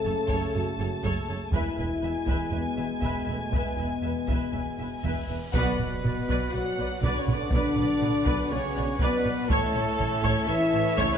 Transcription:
Already playing: trombone section C#3 A3, french horn section A4, violin section A5
0.05 double bass section F#1, cello section F#2, viola section A4, violin section C#5
0.28 double bass section F#1, cello section F#2, viola section A4, violin section C#5, taiko
0.54 double bass section F#1, cello section F#2, french horn section F#4, viola section A4, violin section C#5
0.78 double bass section F#1, cello section F#2, viola section A4, violin section C#5
1.03 double bass section F#1, cello section F#2, viola section A4, violin section C#5, taiko
1.28 double bass section F#1, cello section F#2, viola section A4, violin section C#5
1.51 double bass section E1, cello section E2, trombone section B2 G#3, french horn section E4, viola section B4, violin section E5 G#5, taiko
1.77 double bass section E1, cello section E2, viola section B4, violin section E5
2.02 double bass section E1, cello section E2, viola section B4, violin section E5
2.27 double bass section E1, cello section E2, viola section B4, violin section E5, taiko
2.51 double bass section E1, cello section E2, french horn section B3, viola section B4, violin section E5
2.76 double bass section E1, cello section E2, viola section B4, violin section E5
3.01 double bass section E1, cello section E2, viola section B4, violin section E5, taiko
3.26 double bass section E1, cello section E2, french horn section A3, viola section B4, violin section E5
3.49 double bass section E1, cello section E2, french horn section B3, violin section E5, taiko, reverse cymbal
3.55 viola section B4
3.77 double bass section E1, cello section E2, viola section B4, violin section E5
4.03 double bass section E1, cello section E2, viola section B4, violin section E5
4.27 double bass section E1, cello section E2, viola section B4, violin section E5, taiko
4.52 double bass section E1, cello section E2, viola section B4, violin section E5
4.79 double bass section E1, cello section E2, viola section B4, violin section E5
5.01 double bass section E1, cello section E2, violin section E5, taiko
5.06 viola section B4
5.27 double bass section E1, cello section E2, viola section B4, violin section E5
5.52 double bass section B1, trombone section B2, cello section B2, french horn section B3, string section B3 F#4 B4 F#5, trumpet B4, violin section B4 F#5, viola section B4 D5, taiko, impact
5.79 double bass section B1, cello section B2, viola section B4 D5, taiko low-mid
6.04 double bass section B1, cello section B2, viola section B4 D5, taiko low-mid
6.28 double bass section B1, cello section B2, viola section B4 D5, taiko
6.51 double bass section B1, cello section B2, trombone section F#3, french horn section F#4, viola section B4 D5, trumpet F#5, violin section F#5
6.78 double bass section B1, cello section B2, viola section B4 D5
7.00 double bass section B1, cello section B2, trombone section D3, french horn section D4, violin section D5, trumpet D5, taiko
7.04 viola section B4 D5
7.18 trombone section C#3, french horn section C#4, violin section C#5, trumpet C#5
7.27 double bass section B1, cello section B2, viola section B4 D5, taiko low-mid
7.34 trombone section D3, french horn section D4, violin section D5, trumpet D5
7.49 double bass section B1, cello section B2, trombone section D3, french horn section D4, violin section D5, trumpet D5, taiko
7.55 viola section B4 D5
7.77 double bass section B1, cello section B2, viola section B4 D5, taiko low-mid
8.01 double bass section B1, cello section B2, viola section B4 D5, taiko low-mid
8.26 double bass section B1, cello section B2, viola section B4 D5, taiko
8.50 double bass section B1, cello section B2, trombone section C#3, french horn section C#4, viola section B4 D5, violin section C#5, trumpet C#5
8.76 double bass section B1, cello section B2, viola section B4 D5
8.98 double bass section B1, trombone section B2, cello section B2, french horn section B3, violin section B4, trumpet B4, viola section B4 D5, taiko
9.25 double bass section B1, cello section B2, viola section B4 D5, taiko low-mid
9.48 double bass section A1, trombone section A2, cello section A2, french horn section A3, string section C#4 A4 C#5 E5, violin section A4 C#5 A5, trumpet A4, viola section C#5, taiko
9.74 double bass section A1, cello section A2, viola section C#5, taiko low-mid
9.99 double bass section A1, cello section A2, viola section C#5, taiko low-mid
10.23 double bass section A1, cello section A2, viola section C#5, taiko
10.47 double bass section A1, cello section A2, trombone section E3, french horn section E4, viola section C#5, violin section E5, trumpet E5
10.72 double bass section A1, cello section A2, viola section C#5
10.97 double bass section A1, cello section A2, trombone section C#3, french horn section C#4, violin section C#5, trumpet C#5, viola section C#5, taiko
11.13 trombone section B2, french horn section B3, violin section B4, trumpet B4

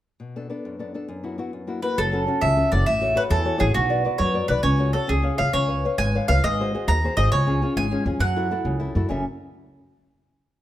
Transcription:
0.20 nylon-string guitar B2
0.36 nylon-string guitar B3 D4 A4
0.50 nylon-string guitar B3 D4 A4
0.65 nylon-string guitar F#2
0.79 nylon-string guitar B3 D4 A4
0.94 nylon-string guitar B3 D4 A4
1.08 nylon-string guitar F#2
1.23 nylon-string guitar B3 E4 F#4
1.38 nylon-string guitar B3 E4 F#4
1.53 nylon-string guitar F#2
1.67 nylon-string guitar A#3 E4 F#4
1.82 nylon-string guitar A#3 E4 F#4, mandolin B4
1.98 upright bass F#1, nylon-string guitar F#3, mandolin A4
2.12 nylon-string guitar C#4 F#4 A4
2.27 nylon-string guitar C#4 F#4 A4
2.41 upright bass C#2, nylon-string guitar C#3, mandolin E5
2.56 nylon-string guitar C#4 F#4 A4
2.72 upright bass F#1, nylon-string guitar C#4 F#4 A4, mandolin D5
2.86 upright bass A1, nylon-string guitar A3, mandolin E5
3.01 nylon-string guitar F#4 A4 C#5
3.15 nylon-string guitar F#4 A4 C#5, mandolin B4
3.30 upright bass E2, nylon-string guitar E3, mandolin A4
3.45 nylon-string guitar F#4 A4 C#5
3.58 upright bass A1, nylon-string guitar F#4 A4 C#5, mandolin G#4
3.74 upright bass B1, nylon-string guitar B3, mandolin F#4
3.89 nylon-string guitar F#4 B4 D5
4.05 nylon-string guitar F#4 B4 D5
4.18 upright bass F#2, nylon-string guitar F#3, mandolin C#5
4.34 nylon-string guitar F#4 B4 D5
4.48 upright bass B1, nylon-string guitar F#4 B4 D5, mandolin B4
4.63 upright bass C#2, nylon-string guitar C#4, mandolin C#5
4.78 nylon-string guitar F#4 A4 C#5
4.93 nylon-string guitar F#4 A4 C#5, mandolin A4
5.07 upright bass C#2, nylon-string guitar C#4, mandolin G#4
5.22 nylon-string guitar G#4 C#5 F5
5.38 upright bass C#2, nylon-string guitar G#4 C#5 F5, mandolin F5
5.53 upright bass C#2, nylon-string guitar C#4, mandolin C#5
5.68 nylon-string guitar B4 C#5 F5
5.85 nylon-string guitar B4 C#5 F5
5.98 upright bass G#1, nylon-string guitar G#3, mandolin G#5
6.15 nylon-string guitar B4 C#5 F5
6.28 upright bass C#2, nylon-string guitar B4 C#5 F5, mandolin F5
6.43 upright bass G#1, nylon-string guitar G#3, mandolin D#5
6.60 nylon-string guitar F#4 G#4 C5
6.74 nylon-string guitar F#4 G#4 C5
6.88 upright bass D#2, nylon-string guitar D#3, mandolin A#5
7.04 nylon-string guitar F#4 G#4 C5
7.17 upright bass G#1, nylon-string guitar F#4 G#4 C5, mandolin D#5
7.32 upright bass C#2, nylon-string guitar C#3, mandolin C#5
7.47 nylon-string guitar C#4 F4 G#4
7.62 nylon-string guitar C#4 F4 G#4
7.77 upright bass G#1, nylon-string guitar G#3, mandolin G#5
7.91 nylon-string guitar C#4 F4 G#4
8.06 upright bass F2, nylon-string guitar C#4 F4 G#4
8.19 upright bass F#2, nylon-string guitar F#3, mandolin F#5
8.36 nylon-string guitar E4 F#4 A4
8.51 nylon-string guitar E4 F#4 A4
8.65 upright bass C#2, nylon-string guitar C#3
8.80 nylon-string guitar E4 F#4 A4
8.95 upright bass F#2, nylon-string guitar E4 F#4 A4
9.09 upright bass F#1, nylon-string guitar F#2 C#3 C#4 F#4 A4 E5

